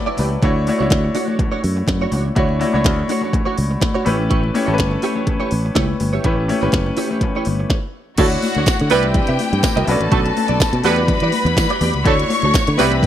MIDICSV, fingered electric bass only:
0, 0, Header, 1, 2, 480
1, 0, Start_track
1, 0, Key_signature, 2, "major"
1, 0, Tempo, 484653
1, 423, Time_signature, 4, 2, 24, 8
1, 12940, End_track
2, 0, Start_track
2, 0, Title_t, "Fingered electric bass"
2, 0, Program_c, 0, 33
2, 187, Note_on_c, 0, 37, 74
2, 353, Note_off_c, 0, 37, 0
2, 423, Note_on_c, 0, 38, 100
2, 680, Note_off_c, 0, 38, 0
2, 796, Note_on_c, 0, 37, 73
2, 873, Note_off_c, 0, 37, 0
2, 902, Note_on_c, 0, 38, 92
2, 1070, Note_off_c, 0, 38, 0
2, 1626, Note_on_c, 0, 42, 82
2, 1792, Note_off_c, 0, 42, 0
2, 1862, Note_on_c, 0, 42, 89
2, 2030, Note_off_c, 0, 42, 0
2, 2100, Note_on_c, 0, 37, 87
2, 2269, Note_off_c, 0, 37, 0
2, 2346, Note_on_c, 0, 38, 85
2, 2601, Note_off_c, 0, 38, 0
2, 2714, Note_on_c, 0, 37, 74
2, 2824, Note_off_c, 0, 37, 0
2, 2824, Note_on_c, 0, 38, 86
2, 2991, Note_off_c, 0, 38, 0
2, 3550, Note_on_c, 0, 37, 81
2, 3715, Note_off_c, 0, 37, 0
2, 4029, Note_on_c, 0, 33, 97
2, 4451, Note_off_c, 0, 33, 0
2, 4635, Note_on_c, 0, 33, 78
2, 4712, Note_off_c, 0, 33, 0
2, 4747, Note_on_c, 0, 31, 92
2, 4913, Note_off_c, 0, 31, 0
2, 5469, Note_on_c, 0, 33, 83
2, 5635, Note_off_c, 0, 33, 0
2, 5702, Note_on_c, 0, 37, 85
2, 5871, Note_off_c, 0, 37, 0
2, 5949, Note_on_c, 0, 31, 89
2, 6115, Note_off_c, 0, 31, 0
2, 6184, Note_on_c, 0, 33, 102
2, 6441, Note_off_c, 0, 33, 0
2, 6561, Note_on_c, 0, 31, 82
2, 6637, Note_off_c, 0, 31, 0
2, 6667, Note_on_c, 0, 30, 87
2, 6834, Note_off_c, 0, 30, 0
2, 7397, Note_on_c, 0, 31, 76
2, 7561, Note_off_c, 0, 31, 0
2, 8104, Note_on_c, 0, 38, 104
2, 8273, Note_off_c, 0, 38, 0
2, 8482, Note_on_c, 0, 38, 95
2, 8558, Note_off_c, 0, 38, 0
2, 8728, Note_on_c, 0, 50, 93
2, 8802, Note_off_c, 0, 50, 0
2, 8839, Note_on_c, 0, 36, 99
2, 9091, Note_off_c, 0, 36, 0
2, 9196, Note_on_c, 0, 48, 85
2, 9274, Note_off_c, 0, 48, 0
2, 9436, Note_on_c, 0, 43, 107
2, 9514, Note_off_c, 0, 43, 0
2, 9670, Note_on_c, 0, 36, 94
2, 9750, Note_off_c, 0, 36, 0
2, 9784, Note_on_c, 0, 35, 104
2, 9874, Note_off_c, 0, 35, 0
2, 9908, Note_on_c, 0, 33, 86
2, 9989, Note_off_c, 0, 33, 0
2, 10024, Note_on_c, 0, 35, 108
2, 10192, Note_off_c, 0, 35, 0
2, 10392, Note_on_c, 0, 35, 90
2, 10471, Note_off_c, 0, 35, 0
2, 10625, Note_on_c, 0, 47, 106
2, 10707, Note_off_c, 0, 47, 0
2, 10737, Note_on_c, 0, 40, 99
2, 10996, Note_off_c, 0, 40, 0
2, 11108, Note_on_c, 0, 52, 74
2, 11188, Note_off_c, 0, 52, 0
2, 11340, Note_on_c, 0, 40, 106
2, 11423, Note_off_c, 0, 40, 0
2, 11457, Note_on_c, 0, 52, 93
2, 11548, Note_off_c, 0, 52, 0
2, 11697, Note_on_c, 0, 40, 97
2, 11789, Note_off_c, 0, 40, 0
2, 11831, Note_on_c, 0, 37, 86
2, 11910, Note_off_c, 0, 37, 0
2, 11941, Note_on_c, 0, 38, 102
2, 12110, Note_off_c, 0, 38, 0
2, 12311, Note_on_c, 0, 38, 93
2, 12390, Note_off_c, 0, 38, 0
2, 12558, Note_on_c, 0, 50, 104
2, 12634, Note_off_c, 0, 50, 0
2, 12674, Note_on_c, 0, 36, 93
2, 12927, Note_off_c, 0, 36, 0
2, 12940, End_track
0, 0, End_of_file